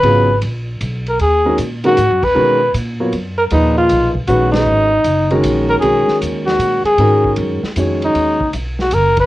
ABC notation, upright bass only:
X:1
M:3/4
L:1/8
Q:"Swing" 1/4=155
K:G#dor
V:1 name="Upright bass" clef=bass
G,,,2 A,,,2 B,,,2 | D,,2 A,,2 (3G,, F,, D,, | B,,2 A,,2 F,,2 | D,,2 B,,,2 A,,,2 |
G,,,2 F,,,2 A,,,2 | B,,, z D,,2 A,, z | G,,2 F,, z E,,2 | D,,2 B,,,2 F,,,2 |]